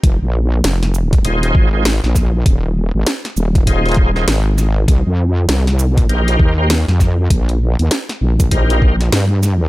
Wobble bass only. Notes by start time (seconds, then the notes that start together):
0.03 F1
0.22 A#1
0.64 F1
1.25 D#1
1.55 G#1
2.04 A#1
2.46 D#1
2.95 G#1
3.36 D#1
4.27 G#1
4.88 C2
5.07 F2
5.48 C2
5.90 B1
6.09 A#1
6.39 D#2
6.88 F2
7.30 A#1
7.79 D#2
8.21 A#1
9.12 G2